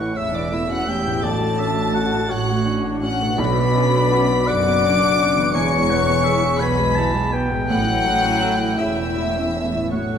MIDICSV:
0, 0, Header, 1, 11, 480
1, 0, Start_track
1, 0, Tempo, 719424
1, 826, Time_signature, 6, 3, 24, 8
1, 3228, Tempo, 705882
1, 4668, Tempo, 743494
1, 6750, End_track
2, 0, Start_track
2, 0, Title_t, "Violin section"
2, 0, Program_c, 0, 48
2, 0, Note_on_c, 0, 85, 78
2, 107, Note_off_c, 0, 85, 0
2, 107, Note_on_c, 0, 88, 91
2, 227, Note_off_c, 0, 88, 0
2, 237, Note_on_c, 0, 86, 82
2, 352, Note_off_c, 0, 86, 0
2, 353, Note_on_c, 0, 88, 93
2, 470, Note_off_c, 0, 88, 0
2, 483, Note_on_c, 0, 90, 100
2, 592, Note_off_c, 0, 90, 0
2, 594, Note_on_c, 0, 91, 98
2, 829, Note_off_c, 0, 91, 0
2, 833, Note_on_c, 0, 93, 89
2, 1542, Note_off_c, 0, 93, 0
2, 1550, Note_on_c, 0, 90, 101
2, 1784, Note_off_c, 0, 90, 0
2, 2027, Note_on_c, 0, 90, 96
2, 2253, Note_off_c, 0, 90, 0
2, 2275, Note_on_c, 0, 95, 106
2, 2991, Note_on_c, 0, 98, 127
2, 2994, Note_off_c, 0, 95, 0
2, 3708, Note_on_c, 0, 97, 113
2, 3710, Note_off_c, 0, 98, 0
2, 4412, Note_off_c, 0, 97, 0
2, 4426, Note_on_c, 0, 95, 100
2, 4903, Note_off_c, 0, 95, 0
2, 5139, Note_on_c, 0, 90, 105
2, 5831, Note_off_c, 0, 90, 0
2, 5854, Note_on_c, 0, 88, 83
2, 6577, Note_on_c, 0, 85, 76
2, 6584, Note_off_c, 0, 88, 0
2, 6750, Note_off_c, 0, 85, 0
2, 6750, End_track
3, 0, Start_track
3, 0, Title_t, "Flute"
3, 0, Program_c, 1, 73
3, 114, Note_on_c, 1, 76, 78
3, 241, Note_on_c, 1, 74, 72
3, 251, Note_off_c, 1, 76, 0
3, 360, Note_on_c, 1, 76, 74
3, 370, Note_off_c, 1, 74, 0
3, 480, Note_on_c, 1, 78, 81
3, 490, Note_off_c, 1, 76, 0
3, 591, Note_on_c, 1, 79, 85
3, 601, Note_off_c, 1, 78, 0
3, 837, Note_on_c, 1, 81, 76
3, 847, Note_off_c, 1, 79, 0
3, 1541, Note_on_c, 1, 78, 73
3, 1551, Note_off_c, 1, 81, 0
3, 1779, Note_off_c, 1, 78, 0
3, 2026, Note_on_c, 1, 78, 85
3, 2265, Note_on_c, 1, 83, 98
3, 2275, Note_off_c, 1, 78, 0
3, 2989, Note_on_c, 1, 86, 110
3, 2999, Note_off_c, 1, 83, 0
3, 3700, Note_off_c, 1, 86, 0
3, 3704, Note_on_c, 1, 85, 109
3, 4409, Note_off_c, 1, 85, 0
3, 4424, Note_on_c, 1, 83, 90
3, 4892, Note_off_c, 1, 83, 0
3, 5142, Note_on_c, 1, 78, 106
3, 5863, Note_on_c, 1, 76, 79
3, 5873, Note_off_c, 1, 78, 0
3, 6588, Note_off_c, 1, 76, 0
3, 6596, Note_on_c, 1, 73, 63
3, 6750, Note_off_c, 1, 73, 0
3, 6750, End_track
4, 0, Start_track
4, 0, Title_t, "Oboe"
4, 0, Program_c, 2, 68
4, 0, Note_on_c, 2, 78, 75
4, 112, Note_on_c, 2, 76, 81
4, 122, Note_off_c, 2, 78, 0
4, 821, Note_on_c, 2, 74, 81
4, 831, Note_off_c, 2, 76, 0
4, 1063, Note_on_c, 2, 76, 73
4, 1073, Note_off_c, 2, 74, 0
4, 1292, Note_off_c, 2, 76, 0
4, 1296, Note_on_c, 2, 78, 80
4, 1534, Note_on_c, 2, 73, 83
4, 1544, Note_off_c, 2, 78, 0
4, 2077, Note_off_c, 2, 73, 0
4, 2268, Note_on_c, 2, 74, 87
4, 2982, Note_on_c, 2, 78, 94
4, 2992, Note_off_c, 2, 74, 0
4, 3705, Note_off_c, 2, 78, 0
4, 3709, Note_on_c, 2, 80, 88
4, 3949, Note_on_c, 2, 78, 85
4, 3960, Note_off_c, 2, 80, 0
4, 4183, Note_on_c, 2, 76, 84
4, 4193, Note_off_c, 2, 78, 0
4, 4426, Note_on_c, 2, 80, 100
4, 4436, Note_off_c, 2, 76, 0
4, 4668, Note_on_c, 2, 81, 100
4, 4678, Note_off_c, 2, 80, 0
4, 4909, Note_on_c, 2, 79, 104
4, 4919, Note_off_c, 2, 81, 0
4, 6401, Note_off_c, 2, 79, 0
4, 6582, Note_on_c, 2, 78, 75
4, 6750, Note_off_c, 2, 78, 0
4, 6750, End_track
5, 0, Start_track
5, 0, Title_t, "Violin section"
5, 0, Program_c, 3, 48
5, 0, Note_on_c, 3, 73, 72
5, 109, Note_off_c, 3, 73, 0
5, 113, Note_on_c, 3, 76, 92
5, 230, Note_on_c, 3, 74, 80
5, 231, Note_off_c, 3, 76, 0
5, 349, Note_off_c, 3, 74, 0
5, 350, Note_on_c, 3, 76, 90
5, 468, Note_off_c, 3, 76, 0
5, 469, Note_on_c, 3, 78, 81
5, 585, Note_off_c, 3, 78, 0
5, 594, Note_on_c, 3, 79, 78
5, 829, Note_off_c, 3, 79, 0
5, 829, Note_on_c, 3, 81, 91
5, 1534, Note_on_c, 3, 78, 87
5, 1540, Note_off_c, 3, 81, 0
5, 1776, Note_off_c, 3, 78, 0
5, 2025, Note_on_c, 3, 78, 97
5, 2253, Note_off_c, 3, 78, 0
5, 2277, Note_on_c, 3, 83, 112
5, 2992, Note_on_c, 3, 86, 123
5, 2994, Note_off_c, 3, 83, 0
5, 3710, Note_off_c, 3, 86, 0
5, 3710, Note_on_c, 3, 85, 120
5, 4412, Note_off_c, 3, 85, 0
5, 4433, Note_on_c, 3, 83, 104
5, 4906, Note_off_c, 3, 83, 0
5, 5143, Note_on_c, 3, 78, 125
5, 5833, Note_off_c, 3, 78, 0
5, 5862, Note_on_c, 3, 76, 89
5, 6588, Note_off_c, 3, 76, 0
5, 6589, Note_on_c, 3, 73, 79
5, 6750, Note_off_c, 3, 73, 0
5, 6750, End_track
6, 0, Start_track
6, 0, Title_t, "French horn section"
6, 0, Program_c, 4, 60
6, 0, Note_on_c, 4, 61, 73
6, 90, Note_off_c, 4, 61, 0
6, 98, Note_on_c, 4, 64, 88
6, 213, Note_on_c, 4, 62, 71
6, 223, Note_off_c, 4, 64, 0
6, 328, Note_on_c, 4, 64, 72
6, 340, Note_off_c, 4, 62, 0
6, 451, Note_on_c, 4, 66, 80
6, 457, Note_off_c, 4, 64, 0
6, 571, Note_on_c, 4, 67, 90
6, 576, Note_off_c, 4, 66, 0
6, 818, Note_off_c, 4, 67, 0
6, 819, Note_on_c, 4, 69, 93
6, 1529, Note_on_c, 4, 66, 86
6, 1535, Note_off_c, 4, 69, 0
6, 1773, Note_off_c, 4, 66, 0
6, 2019, Note_on_c, 4, 66, 88
6, 2249, Note_off_c, 4, 66, 0
6, 2259, Note_on_c, 4, 71, 115
6, 2971, Note_off_c, 4, 71, 0
6, 2978, Note_on_c, 4, 74, 113
6, 3703, Note_off_c, 4, 74, 0
6, 3703, Note_on_c, 4, 73, 114
6, 4409, Note_off_c, 4, 73, 0
6, 4431, Note_on_c, 4, 71, 93
6, 4905, Note_off_c, 4, 71, 0
6, 5135, Note_on_c, 4, 54, 127
6, 5829, Note_off_c, 4, 54, 0
6, 5847, Note_on_c, 4, 64, 86
6, 6581, Note_off_c, 4, 64, 0
6, 6583, Note_on_c, 4, 73, 76
6, 6750, Note_off_c, 4, 73, 0
6, 6750, End_track
7, 0, Start_track
7, 0, Title_t, "Grand piano"
7, 0, Program_c, 5, 0
7, 0, Control_c, 5, 64, 127
7, 0, Note_on_c, 5, 33, 69
7, 0, Note_on_c, 5, 61, 47
7, 0, Note_on_c, 5, 69, 53
7, 106, Note_on_c, 5, 73, 54
7, 257, Note_off_c, 5, 69, 0
7, 357, Note_on_c, 5, 64, 58
7, 490, Note_off_c, 5, 73, 0
7, 588, Note_off_c, 5, 61, 0
7, 588, Note_on_c, 5, 61, 61
7, 735, Note_off_c, 5, 64, 0
7, 805, Note_off_c, 5, 33, 0
7, 823, Note_on_c, 5, 33, 77
7, 826, Note_off_c, 5, 61, 0
7, 839, Control_c, 5, 64, 0
7, 930, Control_c, 5, 64, 127
7, 1064, Note_on_c, 5, 61, 55
7, 1305, Note_on_c, 5, 66, 60
7, 1443, Note_off_c, 5, 61, 0
7, 1529, Note_on_c, 5, 73, 58
7, 1683, Note_off_c, 5, 66, 0
7, 1766, Note_on_c, 5, 62, 63
7, 1920, Note_off_c, 5, 73, 0
7, 2015, Note_on_c, 5, 61, 61
7, 2165, Note_off_c, 5, 62, 0
7, 2240, Note_off_c, 5, 33, 0
7, 2257, Note_on_c, 5, 35, 78
7, 2264, Note_off_c, 5, 61, 0
7, 2282, Control_c, 5, 64, 0
7, 2402, Control_c, 5, 64, 127
7, 2503, Note_on_c, 5, 62, 64
7, 2747, Note_on_c, 5, 66, 64
7, 2891, Note_off_c, 5, 62, 0
7, 2984, Note_on_c, 5, 74, 63
7, 3131, Note_off_c, 5, 66, 0
7, 3228, Note_on_c, 5, 62, 66
7, 3370, Note_off_c, 5, 74, 0
7, 3456, Note_off_c, 5, 62, 0
7, 3467, Note_on_c, 5, 62, 71
7, 3677, Note_off_c, 5, 35, 0
7, 3708, Note_off_c, 5, 62, 0
7, 3708, Note_on_c, 5, 40, 87
7, 3721, Control_c, 5, 64, 0
7, 3850, Control_c, 5, 64, 127
7, 3952, Note_on_c, 5, 59, 57
7, 4192, Note_on_c, 5, 68, 65
7, 4332, Note_off_c, 5, 59, 0
7, 4432, Note_on_c, 5, 71, 65
7, 4573, Note_off_c, 5, 68, 0
7, 4671, Note_on_c, 5, 64, 60
7, 4811, Note_off_c, 5, 71, 0
7, 4909, Note_on_c, 5, 59, 63
7, 5047, Note_off_c, 5, 64, 0
7, 5115, Note_off_c, 5, 40, 0
7, 5144, Note_off_c, 5, 59, 0
7, 5150, Note_on_c, 5, 45, 78
7, 5153, Control_c, 5, 64, 0
7, 5272, Control_c, 5, 64, 127
7, 5390, Note_on_c, 5, 61, 59
7, 5629, Note_on_c, 5, 69, 54
7, 5767, Note_off_c, 5, 61, 0
7, 5865, Note_on_c, 5, 73, 54
7, 6008, Note_off_c, 5, 69, 0
7, 6103, Note_on_c, 5, 64, 56
7, 6248, Note_off_c, 5, 73, 0
7, 6342, Note_on_c, 5, 61, 52
7, 6490, Note_off_c, 5, 64, 0
7, 6564, Note_off_c, 5, 45, 0
7, 6586, Note_off_c, 5, 61, 0
7, 6588, Note_on_c, 5, 45, 63
7, 6597, Control_c, 5, 64, 0
7, 6714, Control_c, 5, 64, 127
7, 6750, Note_off_c, 5, 45, 0
7, 6750, End_track
8, 0, Start_track
8, 0, Title_t, "Harp"
8, 0, Program_c, 6, 46
8, 0, Note_on_c, 6, 45, 55
8, 0, Note_on_c, 6, 57, 39
8, 0, Note_on_c, 6, 64, 42
8, 0, Note_on_c, 6, 69, 46
8, 699, Note_off_c, 6, 45, 0
8, 707, Note_on_c, 6, 45, 60
8, 736, Note_on_c, 6, 62, 50
8, 764, Note_on_c, 6, 66, 48
8, 817, Note_off_c, 6, 64, 0
8, 1901, Note_off_c, 6, 57, 0
8, 1960, Note_off_c, 6, 69, 0
8, 2149, Note_on_c, 6, 47, 64
8, 2171, Note_off_c, 6, 62, 0
8, 2179, Note_on_c, 6, 62, 63
8, 2199, Note_off_c, 6, 66, 0
8, 2207, Note_on_c, 6, 66, 60
8, 2228, Note_off_c, 6, 45, 0
8, 2238, Note_on_c, 6, 74, 57
8, 3588, Note_on_c, 6, 52, 75
8, 3620, Note_on_c, 6, 59, 55
8, 3650, Note_on_c, 6, 64, 59
8, 3668, Note_off_c, 6, 47, 0
8, 3680, Note_on_c, 6, 56, 61
8, 3683, Note_off_c, 6, 62, 0
8, 3698, Note_off_c, 6, 66, 0
8, 3713, Note_off_c, 6, 74, 0
8, 5027, Note_on_c, 6, 45, 63
8, 5057, Note_on_c, 6, 57, 57
8, 5077, Note_off_c, 6, 64, 0
8, 5085, Note_on_c, 6, 64, 54
8, 5103, Note_off_c, 6, 52, 0
8, 5115, Note_on_c, 6, 69, 57
8, 5118, Note_off_c, 6, 59, 0
8, 5146, Note_off_c, 6, 56, 0
8, 6464, Note_off_c, 6, 45, 0
8, 6471, Note_on_c, 6, 45, 47
8, 6498, Note_on_c, 6, 62, 40
8, 6527, Note_on_c, 6, 54, 45
8, 6549, Note_off_c, 6, 69, 0
8, 6556, Note_on_c, 6, 69, 44
8, 6577, Note_off_c, 6, 64, 0
8, 6750, Note_off_c, 6, 45, 0
8, 6750, Note_off_c, 6, 54, 0
8, 6750, Note_off_c, 6, 57, 0
8, 6750, Note_off_c, 6, 62, 0
8, 6750, Note_off_c, 6, 69, 0
8, 6750, End_track
9, 0, Start_track
9, 0, Title_t, "Viola section"
9, 0, Program_c, 7, 48
9, 0, Note_on_c, 7, 52, 58
9, 0, Note_on_c, 7, 64, 52
9, 111, Note_off_c, 7, 52, 0
9, 111, Note_on_c, 7, 49, 65
9, 230, Note_off_c, 7, 49, 0
9, 233, Note_on_c, 7, 52, 59
9, 350, Note_off_c, 7, 52, 0
9, 354, Note_on_c, 7, 57, 69
9, 470, Note_off_c, 7, 57, 0
9, 470, Note_on_c, 7, 61, 64
9, 587, Note_on_c, 7, 57, 63
9, 588, Note_off_c, 7, 61, 0
9, 706, Note_off_c, 7, 57, 0
9, 709, Note_on_c, 7, 52, 65
9, 799, Note_off_c, 7, 64, 0
9, 827, Note_off_c, 7, 52, 0
9, 830, Note_on_c, 7, 66, 68
9, 831, Note_on_c, 7, 54, 65
9, 939, Note_off_c, 7, 54, 0
9, 950, Note_on_c, 7, 57, 71
9, 1067, Note_off_c, 7, 57, 0
9, 1070, Note_on_c, 7, 61, 72
9, 1185, Note_off_c, 7, 61, 0
9, 1190, Note_on_c, 7, 62, 66
9, 1305, Note_off_c, 7, 62, 0
9, 1309, Note_on_c, 7, 61, 69
9, 1423, Note_off_c, 7, 61, 0
9, 1424, Note_on_c, 7, 57, 62
9, 1541, Note_off_c, 7, 57, 0
9, 1545, Note_on_c, 7, 54, 73
9, 1661, Note_off_c, 7, 54, 0
9, 1662, Note_on_c, 7, 57, 67
9, 1780, Note_off_c, 7, 57, 0
9, 1783, Note_on_c, 7, 61, 75
9, 1903, Note_off_c, 7, 61, 0
9, 1905, Note_on_c, 7, 62, 71
9, 2025, Note_off_c, 7, 62, 0
9, 2033, Note_on_c, 7, 61, 79
9, 2151, Note_off_c, 7, 61, 0
9, 2151, Note_on_c, 7, 57, 78
9, 2271, Note_off_c, 7, 57, 0
9, 2275, Note_on_c, 7, 54, 75
9, 2385, Note_off_c, 7, 54, 0
9, 2395, Note_on_c, 7, 59, 76
9, 2513, Note_off_c, 7, 59, 0
9, 2513, Note_on_c, 7, 61, 80
9, 2632, Note_off_c, 7, 61, 0
9, 2635, Note_on_c, 7, 62, 77
9, 2753, Note_off_c, 7, 62, 0
9, 2759, Note_on_c, 7, 61, 89
9, 2872, Note_on_c, 7, 59, 71
9, 2875, Note_off_c, 7, 61, 0
9, 2991, Note_off_c, 7, 59, 0
9, 2995, Note_on_c, 7, 54, 69
9, 3112, Note_off_c, 7, 54, 0
9, 3115, Note_on_c, 7, 59, 70
9, 3231, Note_off_c, 7, 59, 0
9, 3234, Note_on_c, 7, 61, 81
9, 3349, Note_on_c, 7, 62, 73
9, 3352, Note_off_c, 7, 61, 0
9, 3469, Note_off_c, 7, 62, 0
9, 3469, Note_on_c, 7, 61, 72
9, 3589, Note_off_c, 7, 61, 0
9, 3593, Note_on_c, 7, 59, 73
9, 3684, Note_off_c, 7, 66, 0
9, 3709, Note_on_c, 7, 52, 78
9, 3711, Note_off_c, 7, 59, 0
9, 3711, Note_on_c, 7, 56, 71
9, 3821, Note_off_c, 7, 52, 0
9, 3822, Note_off_c, 7, 56, 0
9, 3830, Note_on_c, 7, 56, 81
9, 3950, Note_off_c, 7, 56, 0
9, 3956, Note_on_c, 7, 59, 84
9, 4071, Note_on_c, 7, 56, 74
9, 4072, Note_off_c, 7, 59, 0
9, 4188, Note_on_c, 7, 52, 76
9, 4189, Note_off_c, 7, 56, 0
9, 4306, Note_on_c, 7, 56, 70
9, 4307, Note_off_c, 7, 52, 0
9, 4426, Note_off_c, 7, 56, 0
9, 4427, Note_on_c, 7, 59, 77
9, 4545, Note_on_c, 7, 56, 73
9, 4547, Note_off_c, 7, 59, 0
9, 4667, Note_off_c, 7, 56, 0
9, 4669, Note_on_c, 7, 52, 77
9, 4785, Note_off_c, 7, 52, 0
9, 4785, Note_on_c, 7, 56, 67
9, 4903, Note_off_c, 7, 56, 0
9, 4907, Note_on_c, 7, 59, 65
9, 5024, Note_off_c, 7, 59, 0
9, 5024, Note_on_c, 7, 56, 66
9, 5141, Note_on_c, 7, 49, 67
9, 5142, Note_off_c, 7, 56, 0
9, 5142, Note_on_c, 7, 64, 67
9, 5252, Note_off_c, 7, 49, 0
9, 5264, Note_on_c, 7, 52, 74
9, 5381, Note_off_c, 7, 52, 0
9, 5384, Note_on_c, 7, 57, 71
9, 5501, Note_off_c, 7, 57, 0
9, 5503, Note_on_c, 7, 61, 64
9, 5620, Note_off_c, 7, 61, 0
9, 5626, Note_on_c, 7, 57, 67
9, 5742, Note_off_c, 7, 57, 0
9, 5745, Note_on_c, 7, 52, 62
9, 5861, Note_on_c, 7, 49, 59
9, 5862, Note_off_c, 7, 52, 0
9, 5980, Note_off_c, 7, 49, 0
9, 5986, Note_on_c, 7, 52, 56
9, 6100, Note_on_c, 7, 57, 68
9, 6103, Note_off_c, 7, 52, 0
9, 6221, Note_off_c, 7, 57, 0
9, 6225, Note_on_c, 7, 61, 60
9, 6341, Note_on_c, 7, 57, 58
9, 6344, Note_off_c, 7, 61, 0
9, 6463, Note_off_c, 7, 57, 0
9, 6463, Note_on_c, 7, 52, 56
9, 6586, Note_off_c, 7, 52, 0
9, 6586, Note_off_c, 7, 64, 0
9, 6586, Note_on_c, 7, 54, 60
9, 6587, Note_off_c, 7, 54, 0
9, 6587, Note_on_c, 7, 54, 55
9, 6714, Note_on_c, 7, 57, 61
9, 6750, Note_off_c, 7, 54, 0
9, 6750, Note_off_c, 7, 57, 0
9, 6750, End_track
10, 0, Start_track
10, 0, Title_t, "Cello section"
10, 0, Program_c, 8, 48
10, 108, Note_on_c, 8, 40, 76
10, 706, Note_off_c, 8, 40, 0
10, 825, Note_on_c, 8, 45, 88
10, 1419, Note_off_c, 8, 45, 0
10, 1537, Note_on_c, 8, 45, 83
10, 2145, Note_off_c, 8, 45, 0
10, 2267, Note_on_c, 8, 47, 91
10, 2870, Note_off_c, 8, 47, 0
10, 2991, Note_on_c, 8, 42, 99
10, 3590, Note_off_c, 8, 42, 0
10, 3710, Note_on_c, 8, 40, 88
10, 4307, Note_off_c, 8, 40, 0
10, 4425, Note_on_c, 8, 47, 87
10, 5021, Note_off_c, 8, 47, 0
10, 5140, Note_on_c, 8, 45, 86
10, 5737, Note_off_c, 8, 45, 0
10, 5857, Note_on_c, 8, 40, 77
10, 6463, Note_off_c, 8, 40, 0
10, 6584, Note_on_c, 8, 45, 73
10, 6750, Note_off_c, 8, 45, 0
10, 6750, End_track
11, 0, Start_track
11, 0, Title_t, "Double bass section"
11, 0, Program_c, 10, 48
11, 106, Note_on_c, 10, 28, 75
11, 705, Note_off_c, 10, 28, 0
11, 825, Note_on_c, 10, 33, 91
11, 1419, Note_off_c, 10, 33, 0
11, 1540, Note_on_c, 10, 33, 92
11, 2147, Note_off_c, 10, 33, 0
11, 2269, Note_on_c, 10, 35, 104
11, 2870, Note_off_c, 10, 35, 0
11, 2990, Note_on_c, 10, 30, 92
11, 3589, Note_off_c, 10, 30, 0
11, 3707, Note_on_c, 10, 28, 107
11, 4305, Note_off_c, 10, 28, 0
11, 4426, Note_on_c, 10, 35, 95
11, 5022, Note_off_c, 10, 35, 0
11, 5138, Note_on_c, 10, 33, 102
11, 5736, Note_off_c, 10, 33, 0
11, 5856, Note_on_c, 10, 28, 80
11, 6462, Note_off_c, 10, 28, 0
11, 6587, Note_on_c, 10, 33, 77
11, 6750, Note_off_c, 10, 33, 0
11, 6750, End_track
0, 0, End_of_file